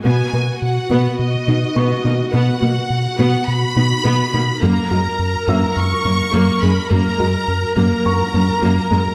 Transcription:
<<
  \new Staff \with { instrumentName = "Grand piano" } { \time 4/4 \key b \major \tempo 4 = 105 r2. cis'''4~ | cis'''2 r2 | r4. <e'' e'''>2~ <e'' e'''>8~ | <e'' e'''>8 r4. cis'''2 | }
  \new Staff \with { instrumentName = "Violin section" } { \time 4/4 \key b \major gis''4 fis''4 dis''2 | fis''2 b''2 | ais''2 cis'''4. b''8 | ais''4. ais''2~ ais''8 | }
  \new Staff \with { instrumentName = "Synth arpeggio sound" } { \time 4/4 \key b \major b8 b'8 r8 b8 r8 dis'8 b8 dis'8 | b8 b'8 r8 b8 r8 dis'8 b8 dis'8 | fis8 fis'8 r8 fis8 r8 ais8 fis8 ais8 | fis8 fis'8 r8 fis8 r8 ais8 fis8 ais8 | }
  \new Staff \with { instrumentName = "Viola section" } { \time 4/4 \key b \major << { fis'1~ | fis'1 | ais'1~ | ais'1 | } \\ { b8 ais8 r8 b8 r8 b8 b8 ais8 | b8 ais8 r8 b8 r8 b8 b8 ais8 | ais8 gis8 r8 ais8 r8 ais8 ais8 gis8 | ais8 gis8 r8 ais8 r8 ais8 ais8 gis8 | } >> }
  \new Staff \with { instrumentName = "Analog synth bass" } { \clef bass \time 4/4 \key b \major b,8 b,8 b,8 b,8 b,8 b,8 b,8 b,8 | b,8 b,8 b,8 b,8 b,8 b,8 b,8 b,8 | fis,8 fis,8 fis,8 fis,8 fis,8 fis,8 fis,8 fis,8 | fis,8 fis,8 fis,8 fis,8 fis,8 fis,8 fis,8 fis,8 | }
  \new Staff \with { instrumentName = "Cello section" } { \clef bass \time 4/4 \key b \major b,8 b,8 r8 b,8 r8 b,8 b,8 b,8 | b,8 b,8 r8 b,8 r8 b,8 b,8 b,8 | fis,8 fis,8 r8 fis,8 r8 fis,8 fis,8 fis,8 | fis,8 fis,8 r8 fis,8 r8 fis,8 fis,8 fis,8 | }
>>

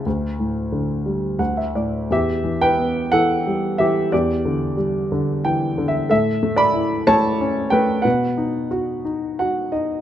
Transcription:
<<
  \new Staff \with { instrumentName = "Grand piano" } { \time 3/4 \key d \mixolydian \tempo 4 = 90 <e'' a''>2 fis''16 e''16 d''8 | \key e \minor <g' e''>8. <b' g''>8. <a' fis''>4 <g' e''>8 | <g' d''>4 r4 \tuplet 3/2 { g''4 e''8 } | <a' e''>8. <d'' b''>8. <cis'' a''>4 <b' g''>8 |
<b' fis''>4 r4 fis''8 dis''8 | }
  \new Staff \with { instrumentName = "Grand piano" } { \clef bass \time 3/4 \key d \mixolydian d,8 a,8 d8 g8 d,8 a,8 | \key e \minor e,8 e8 b8 e8 g8 e8 | e,8 d8 g8 d8 e8 d8 | a,8 a8 e'8 a8 cis'8 a8 |
b,8 dis'8 fis'8 dis'8 fis'8 dis'8 | }
>>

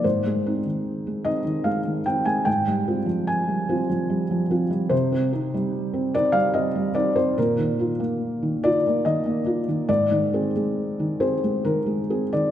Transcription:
<<
  \new Staff \with { instrumentName = "Felt piano" } { \time 3/4 \key aes \lydian \tempo 4 = 73 c''4. ees''8 f''8 g''16 aes''16 | g''4 aes''4. r8 | c''4. d''16 f''16 ees''8 d''16 c''16 | bes'4. d''8 ees''4 |
d''4. c''8 bes'8. d''16 | }
  \new Staff \with { instrumentName = "Felt piano" } { \time 3/4 \key aes \lydian aes,16 aes16 <c' ees'>16 ees8 aes16 <c' ees'>16 ees16 aes16 ees16 <c' ees'>16 aes16 | aes,16 g16 <c' f'>16 f8 g16 <c' f'>16 f16 g16 f16 <c' f'>16 g16 | c16 c'16 <c' ees'>16 g8 c'16 <c' ees'>16 g16 c'16 g16 <c' ees'>16 c'16 | bes,16 ees16 <ees' f'>16 bes8 ees16 <ees' f'>16 bes16 ees16 bes16 <ees' f'>16 ees16 |
aes,16 ees16 <c' aes'>16 aes8 ees16 <c' aes'>16 aes16 ees16 aes16 <c' aes'>16 ees16 | }
>>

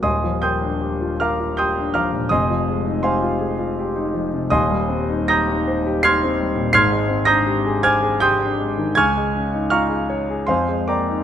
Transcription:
\new Staff \with { instrumentName = "Grand piano" } { \time 3/4 \key ees \major \tempo 4 = 80 << { <ees'' aes'' c''' ees'''>8 <g'' c''' ees''' g'''>4 <f'' bes'' d''' f'''>8 <g'' c''' ees''' g'''>8 <f'' bes'' d''' f'''>8 | <ees'' aes'' c''' ees'''>4 <c'' f'' aes'' c'''>2 | <ees'' aes'' c''' ees'''>4 <bes'' ees''' g''' bes'''>4 <c''' f''' aes''' c''''>4 | <c''' f''' aes''' c''''>8. <bes'' ees''' g''' bes'''>8. <aes'' d''' f''' aes'''>8 <g'' c''' ees''' g'''>4 |
<aes'' des''' f''' aes'''>4 <f'' bes'' des''' f'''>4 <c'' f'' aes'' c'''>8 <d'' g'' bes'' d'''>8 | } \\ { <ees,, ees,>16 f16 bes16 d'16 g'16 f'16 bes'16 f'16 g'16 d'16 f16 bes,16 | <f,, f,>16 f16 aes16 ees'16 g'16 f'16 aes'16 f'16 g'16 ees'16 f16 c16 | <ees,, ees,>16 g16 c'16 ees'16 g'16 ees'16 c''16 g'16 ees'16 c'16 g16 bes,16 | <aes,, aes,>16 aes16 c'16 d'16 g'16 aes'16 c''16 aes'16 g'16 d'16 aes16 ees16 |
des,16 aes16 des'16 ees'16 f'16 aes'16 des''16 aes'16 f,16 aes16 bes16 ees'16 | } >> }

